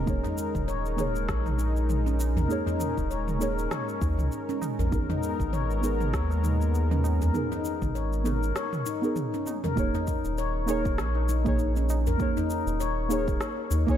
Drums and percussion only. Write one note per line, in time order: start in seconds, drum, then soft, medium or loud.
0.07 kick loud
0.07 mid tom medium
0.07 shaker soft
0.24 tabla na medium
0.24 tabla ge medium
0.24 shaker soft
0.38 shaker medium
0.55 kick medium
0.55 mid tom medium
0.55 tabla tin medium
0.55 shaker soft
0.69 shaker soft
0.86 shaker soft
0.98 mid tom medium
0.98 tabla na soft
0.98 tabla tin soft
0.98 shaker medium
1.16 shaker soft
1.29 kick medium
1.29 cross-stick medium
1.29 shaker soft
1.46 mid tom medium
1.46 tabla na soft
1.46 shaker soft
1.59 shaker medium
1.76 shaker soft
1.89 mid tom medium
1.89 shaker soft
2.06 tabla tin medium
2.06 shaker soft
2.19 tabla na medium
2.19 tabla tin medium
2.19 shaker medium
2.36 mid tom medium
2.36 tabla ge medium
2.36 shaker soft
2.50 shaker soft
2.66 tabla na medium
2.66 tabla ge medium
2.66 shaker soft
2.80 mid tom medium
2.80 shaker medium
2.97 kick soft
2.97 tabla tin medium
2.97 shaker soft
3.11 shaker soft
3.28 mid tom medium
3.28 shaker soft
3.41 shaker medium
3.59 shaker soft
3.71 cross-stick medium
3.71 mid tom medium
3.71 shaker soft
3.89 shaker soft
4.02 kick loud
4.02 shaker medium
4.19 mid tom medium
4.19 tabla tin medium
4.19 shaker soft
4.32 shaker soft
4.49 shaker soft
4.62 mid tom medium
4.62 tabla na medium
4.62 shaker medium
4.80 tabla tin medium
4.80 tabla ge medium
4.80 shaker soft
4.92 kick loud
4.92 shaker soft
5.09 mid tom medium
5.09 tabla na medium
5.09 tabla ge medium
5.09 shaker soft
5.23 shaker medium
5.39 kick medium
5.39 tabla tin medium
5.39 shaker soft
5.53 mid tom medium
5.53 shaker soft
5.71 shaker soft
5.83 tabla na medium
5.83 tabla tin soft
5.83 shaker medium
6.00 mid tom medium
6.00 shaker soft
6.13 kick medium
6.13 cross-stick medium
6.13 shaker soft
6.30 tabla na medium
6.30 shaker soft
6.44 mid tom medium
6.44 shaker medium
6.61 shaker soft
6.75 shaker soft
6.91 mid tom medium
6.91 tabla tin medium
6.91 shaker soft
7.04 tabla na medium
7.04 tabla tin medium
7.04 shaker medium
7.21 tabla ge medium
7.21 shaker soft
7.34 mid tom medium
7.34 shaker soft
7.52 tabla na medium
7.52 tabla ge medium
7.52 shaker soft
7.65 shaker medium
7.82 kick soft
7.82 mid tom medium
7.82 tabla tin medium
7.82 shaker soft
7.95 shaker soft
8.13 shaker soft
8.25 mid tom medium
8.25 tabla na medium
8.25 tabla tin soft
8.25 shaker medium
8.43 shaker soft
8.56 cross-stick medium
8.56 shaker soft
8.73 mid tom medium
8.73 tabla tin soft
8.73 shaker soft
8.86 shaker medium
9.03 tabla tin medium
9.03 shaker soft
9.16 mid tom medium
9.16 shaker soft
9.34 shaker soft
9.46 high tom medium
9.46 tabla na medium
9.46 shaker medium
9.64 mid tom medium
9.64 tabla tin medium
9.64 tabla ge medium
9.64 shaker soft
9.77 kick loud
9.77 shaker soft
9.94 tabla na medium
9.94 tabla ge medium
9.94 shaker soft
10.07 kick medium
10.07 shaker medium
10.24 tabla tin medium
10.24 shaker soft
10.38 shaker soft
10.68 tabla na medium
10.68 tabla tin soft
10.68 shaker medium
10.85 kick loud
10.85 shaker soft
10.98 cross-stick medium
10.98 shaker soft
11.15 tabla na medium
11.29 shaker medium
11.46 kick loud
11.46 mid tom medium
11.46 shaker soft
11.59 shaker soft
11.76 tabla tin medium
11.76 shaker soft
11.89 tabla na medium
11.89 tabla tin medium
11.89 shaker medium
12.07 tabla ge medium
12.07 shaker soft
12.20 kick loud
12.20 shaker soft
12.37 tabla na medium
12.37 tabla ge medium
12.37 shaker soft
12.50 shaker medium
12.67 tabla tin medium
12.67 shaker soft
12.80 shaker soft
13.11 shaker medium
13.28 kick loud
13.28 shaker soft
13.41 cross-stick medium
13.41 shaker soft
13.71 shaker medium
13.88 kick loud
13.88 tabla tin medium
13.88 shaker soft